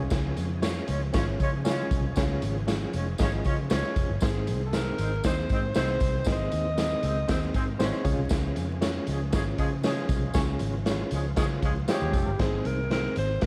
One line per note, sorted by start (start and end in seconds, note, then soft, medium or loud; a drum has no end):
0.00 0.58 C#3 medium
0.00 4.18 F3 medium
0.00 0.47 C#4 loud
0.00 4.18 C#4 medium
0.00 0.47 F4 medium
0.00 0.47 G#4 medium
0.00 1.89 G#4 medium
0.00 0.47 C#5 loud
0.10 0.32 C#2 loud
0.10 kick loud
0.10 snare loud
0.10 closed hi-hat medium
0.10 tambourine loud
0.37 0.79 F2 medium
0.37 closed hi-hat medium
0.37 tambourine medium
0.62 1.02 C#4 medium
0.62 1.02 F4 medium
0.62 1.02 G#4 medium
0.62 1.02 C#5 loud
0.62 snare loud
0.62 closed hi-hat medium
0.62 tambourine medium
0.88 1.10 C#2 loud
0.88 1.00 G#3 medium
0.88 1.00 C#4 medium
0.88 1.00 F4 medium
0.88 1.00 C#5 loud
0.88 closed hi-hat medium
0.88 tambourine medium
1.13 1.35 G#1 loud
1.13 1.23 G#3 medium
1.13 1.53 C#4 medium
1.13 1.23 C#4 medium
1.13 1.53 F4 medium
1.13 1.23 F4 medium
1.13 1.53 G#4 medium
1.13 1.53 C#5 medium
1.13 1.23 C#5 loud
1.13 kick loud
1.13 snare loud
1.13 closed hi-hat medium
1.13 tambourine medium
1.40 1.82 C#3 medium
1.40 1.49 G#3 medium
1.40 1.49 C#4 medium
1.40 1.49 F4 medium
1.40 1.49 C#5 loud
1.40 kick medium
1.40 closed hi-hat medium
1.40 tambourine soft
1.65 2.15 G#3 medium
1.65 2.05 C#4 medium
1.65 2.15 C#4 medium
1.65 2.05 F4 medium
1.65 2.15 F4 medium
1.65 2.04 G#4 medium
1.65 2.05 C#5 medium
1.65 2.15 C#5 loud
1.65 snare loud
1.65 closed hi-hat medium
1.65 tambourine medium
1.90 2.12 C2 medium
1.90 2.64 C#3 medium
1.90 4.19 G#4 medium
1.90 kick medium
1.90 closed hi-hat medium
1.90 tambourine medium
2.16 2.38 C#2 medium
2.16 2.56 C#4 loud
2.16 2.23 E4 medium
2.16 2.56 G#4 medium
2.16 2.56 C#5 loud
2.16 kick loud
2.16 snare loud
2.16 closed hi-hat medium
2.16 tambourine medium
2.23 2.59 F4 medium
2.42 2.85 G#1 medium
2.42 closed hi-hat medium
2.42 tambourine medium
2.67 3.07 C#4 medium
2.67 3.07 F4 medium
2.67 3.07 G#4 medium
2.67 3.07 C#5 medium
2.67 snare medium
2.67 closed hi-hat medium
2.67 tambourine medium
2.93 3.15 F1 medium
2.93 3.06 G#3 medium
2.93 3.06 C#4 medium
2.93 3.05 F4 medium
2.93 3.06 C#5 medium
2.93 closed hi-hat medium
2.93 tambourine medium
3.18 3.41 G#1 loud
3.18 3.29 G#3 medium
3.18 3.58 C#4 medium
3.18 3.29 C#4 medium
3.18 3.58 F4 medium
3.18 3.28 F4 medium
3.18 3.58 G#4 medium
3.18 3.29 C#5 medium
3.18 3.59 D#5 medium
3.18 kick loud
3.18 snare loud
3.18 closed hi-hat medium
3.18 tambourine loud
3.44 3.66 C#3 medium
3.44 3.54 G#3 medium
3.44 3.54 C#4 medium
3.44 3.54 F4 medium
3.44 3.54 C#5 medium
3.44 kick medium
3.44 closed hi-hat medium
3.44 tambourine soft
3.70 3.81 C#2 medium
3.70 4.19 G#3 medium
3.70 4.10 C#4 medium
3.70 4.19 C#4 medium
3.70 4.10 F4 medium
3.70 4.19 F4 medium
3.70 4.10 G#4 medium
3.70 3.76 C5 medium
3.70 4.19 C#5 loud
3.70 snare loud
3.70 closed hi-hat medium
3.70 tambourine medium
3.76 4.13 C#5 medium
3.84 snare soft
3.96 4.07 F1 medium
3.96 kick medium
3.96 closed hi-hat medium
3.96 tambourine medium
4.10 4.20 G1 medium
4.20 4.50 G#1 medium
4.20 4.95 G#2 medium
4.20 8.01 D#3 medium
4.20 4.61 C4 medium
4.20 8.02 C4 medium
4.20 4.61 D#4 medium
4.20 4.61 G#4 medium
4.20 6.25 G#4 medium
4.20 4.68 G#4 medium
4.20 4.61 C5 medium
4.20 kick loud
4.20 snare loud
4.20 closed hi-hat medium
4.20 tambourine medium
4.47 4.90 C2 medium
4.47 closed hi-hat medium
4.47 tambourine medium
4.67 4.76 A4 medium
4.73 5.12 C4 medium
4.73 5.12 D#4 medium
4.73 5.12 G#4 medium
4.73 5.25 A#4 medium
4.73 5.13 C5 medium
4.73 snare medium
4.73 closed hi-hat medium
4.73 tambourine medium
4.98 5.20 G#1 loud
4.98 5.10 G#3 medium
4.98 5.10 C4 medium
4.98 5.10 D#4 medium
4.98 5.10 C5 medium
4.98 closed hi-hat medium
4.98 tambourine soft
5.24 5.45 D#2 medium
5.24 5.33 G#3 medium
5.24 5.33 C4 medium
5.24 5.64 C4 medium
5.24 5.33 D#4 loud
5.24 5.64 D#4 medium
5.24 5.64 G#4 medium
5.24 5.33 C5 loud
5.24 5.72 C5 medium
5.24 5.64 C5 medium
5.24 kick medium
5.24 snare loud
5.24 closed hi-hat medium
5.24 tambourine loud
5.49 5.71 G#2 medium
5.49 5.59 G#3 medium
5.49 5.59 C4 medium
5.49 5.58 D#4 medium
5.49 5.59 C5 medium
5.49 kick medium
5.49 closed hi-hat medium
5.49 tambourine soft
5.74 5.97 C2 medium
5.74 6.24 G#3 medium
5.74 6.15 C4 medium
5.74 6.24 C4 loud
5.74 6.15 D#4 medium
5.74 6.24 D#4 medium
5.74 6.15 G#4 medium
5.74 6.15 C5 medium
5.74 6.24 C5 loud
5.74 6.29 C5 medium
5.74 snare loud
5.74 closed hi-hat medium
5.74 tambourine medium
5.88 snare soft
6.00 6.22 C2 medium
6.00 kick medium
6.00 closed hi-hat medium
6.00 tambourine medium
6.25 6.48 G#1 medium
6.25 6.99 G#2 medium
6.25 6.65 C4 medium
6.25 6.66 D#4 medium
6.25 6.66 G#4 medium
6.25 8.03 A#4 medium
6.25 6.33 B4 medium
6.25 7.80 D#5 loud
6.25 kick loud
6.25 snare loud
6.25 closed hi-hat medium
6.25 tambourine medium
6.32 6.69 C5 loud
6.52 6.94 D#2 medium
6.52 closed hi-hat medium
6.52 tambourine medium
6.77 7.17 C4 medium
6.77 7.17 D#4 medium
6.77 7.17 G#4 medium
6.77 7.17 C5 medium
6.77 snare medium
6.77 closed hi-hat medium
6.77 tambourine medium
7.03 7.24 C#2 medium
7.03 7.14 G#3 medium
7.03 7.14 C4 medium
7.03 7.14 D#4 medium
7.03 7.14 C5 medium
7.03 closed hi-hat medium
7.03 tambourine medium
7.27 7.50 D#2 loud
7.27 7.37 G#3 medium
7.27 7.67 C4 medium
7.27 7.37 C4 loud
7.27 7.67 D#4 medium
7.27 7.37 D#4 medium
7.27 7.67 G#4 medium
7.27 7.67 C5 medium
7.27 7.37 C5 loud
7.27 kick loud
7.27 snare loud
7.27 closed hi-hat medium
7.27 tambourine medium
7.54 7.75 G#2 medium
7.54 7.62 G#3 medium
7.54 7.62 C4 medium
7.54 7.62 D#4 medium
7.54 7.62 C5 medium
7.54 kick medium
7.54 closed hi-hat medium
7.54 tambourine medium
7.79 7.90 G#1 medium
7.79 8.29 G#3 loud
7.79 8.05 C4 medium
7.79 8.29 C#4 medium
7.79 8.05 D#4 medium
7.79 8.29 F4 medium
7.79 8.03 G#4 medium
7.79 8.05 C5 loud
7.79 8.29 C#5 medium
7.79 snare loud
7.79 closed hi-hat medium
7.79 tambourine medium
7.93 snare soft
8.04 8.15 C#2 medium
8.04 8.78 C#3 medium
8.04 12.36 F3 medium
8.04 8.66 C#4 medium
8.04 12.35 C#4 medium
8.04 8.66 F4 medium
8.04 8.66 G#4 medium
8.04 10.07 G#4 medium
8.04 8.66 C#5 loud
8.04 kick medium
8.04 closed hi-hat medium
8.04 tambourine medium
8.19 8.29 C2 medium
8.29 8.52 C#2 loud
8.29 kick loud
8.29 snare loud
8.29 closed hi-hat medium
8.29 tambourine medium
8.56 8.98 F2 medium
8.56 closed hi-hat medium
8.56 tambourine medium
8.81 9.21 C#4 medium
8.81 9.21 F4 medium
8.81 9.21 G#4 medium
8.81 9.21 C#5 loud
8.81 snare loud
8.81 closed hi-hat medium
8.81 tambourine medium
9.07 9.35 C#2 medium
9.07 9.19 F3 medium
9.07 9.19 G#3 medium
9.07 9.19 C#4 medium
9.07 9.19 G#4 medium
9.07 closed hi-hat medium
9.07 tambourine soft
9.32 9.54 G#1 loud
9.32 9.42 F3 medium
9.32 9.42 G#3 loud
9.32 9.72 C#4 medium
9.32 9.41 C#4 loud
9.32 9.72 F4 medium
9.32 9.72 G#4 medium
9.32 9.42 G#4 loud
9.32 9.72 C#5 medium
9.32 kick loud
9.32 snare loud
9.32 closed hi-hat medium
9.32 tambourine loud
9.58 10.00 C#3 medium
9.58 9.67 F3 medium
9.58 9.66 G#3 loud
9.58 9.66 C#4 medium
9.58 9.66 G#4 loud
9.58 kick medium
9.58 closed hi-hat medium
9.58 tambourine soft
9.84 10.32 F3 medium
9.84 10.33 G#3 medium
9.84 10.23 C#4 medium
9.84 10.32 C#4 loud
9.84 10.23 F4 medium
9.84 10.23 G#4 medium
9.84 10.33 G#4 loud
9.84 10.23 C#5 medium
9.84 snare loud
9.84 closed hi-hat medium
9.84 tambourine loud
9.97 snare soft
10.09 10.30 C2 medium
10.09 10.82 C#3 medium
10.09 12.37 F4 medium
10.09 kick medium
10.09 closed hi-hat medium
10.09 tambourine medium
10.34 10.56 C#2 medium
10.34 10.74 C#4 loud
10.34 10.74 F4 medium
10.34 10.74 G#4 loud
10.34 10.74 C#5 loud
10.34 kick loud
10.34 snare loud
10.34 closed hi-hat medium
10.34 tambourine loud
10.59 11.02 G#1 medium
10.59 closed hi-hat medium
10.59 tambourine medium
10.85 11.25 C#4 medium
10.85 11.25 F4 medium
10.85 11.25 G#4 medium
10.85 11.25 C#5 loud
10.85 snare medium
10.85 closed hi-hat medium
10.85 tambourine medium
11.11 11.33 C#2 medium
11.11 11.23 F3 medium
11.11 11.23 G#3 medium
11.11 11.22 C#4 medium
11.11 11.23 G#4 medium
11.11 closed hi-hat medium
11.11 tambourine medium
11.36 11.58 C#3 loud
11.36 11.45 F3 medium
11.36 11.45 G#3 medium
11.36 11.76 C#4 medium
11.36 11.45 C#4 medium
11.36 11.76 F4 medium
11.36 11.76 G#4 medium
11.36 11.45 G#4 loud
11.36 11.76 C#5 medium
11.36 kick loud
11.36 snare loud
11.36 closed hi-hat medium
11.36 tambourine medium
11.62 11.84 C#2 medium
11.62 11.70 F3 medium
11.62 11.71 G#3 medium
11.62 11.71 C#4 medium
11.62 11.71 G#4 medium
11.62 kick medium
11.62 closed hi-hat medium
11.62 tambourine soft
11.88 12.37 F3 medium
11.88 12.27 G#3 medium
11.88 12.37 G#3 medium
11.88 12.27 C#4 medium
11.88 12.37 C#4 medium
11.88 12.27 F4 medium
11.88 12.42 G4 medium
11.88 12.37 G#4 loud
11.88 11.94 C5 medium
11.88 snare loud
11.88 closed hi-hat medium
11.88 tambourine medium
11.95 12.31 C#5 loud
12.02 12.12 D#2 medium
12.13 12.24 F1 medium
12.13 kick medium
12.13 closed hi-hat medium
12.13 tambourine medium
12.27 12.37 G1 medium
12.39 12.60 G#1 loud
12.39 13.12 G#2 medium
12.39 13.41 D#3 medium
12.39 12.79 C4 medium
12.39 13.41 C4 medium
12.39 12.79 D#4 medium
12.39 12.79 G#4 medium
12.39 13.41 G#4 medium
12.39 12.68 G#4 medium
12.39 12.79 C5 medium
12.39 kick loud
12.39 snare loud
12.39 closed hi-hat medium
12.65 13.07 C2 medium
12.65 12.91 A#4 medium
12.65 closed hi-hat medium
12.90 13.30 C4 medium
12.90 13.30 D#4 medium
12.90 13.30 G#4 medium
12.90 13.15 A#4 medium
12.90 13.30 C5 medium
12.90 snare medium
12.90 closed hi-hat medium
13.16 13.38 G#1 medium
13.16 13.45 C5 medium
13.16 closed hi-hat medium
13.41 13.46 G1 loud
13.41 13.46 G2 medium
13.41 13.46 D#3 medium
13.41 13.46 A#3 medium
13.41 13.46 D#4 medium
13.41 13.46 F#4 soft
13.41 13.46 G4 medium
13.41 13.46 A#4 medium
13.41 kick loud
13.41 snare loud
13.41 closed hi-hat medium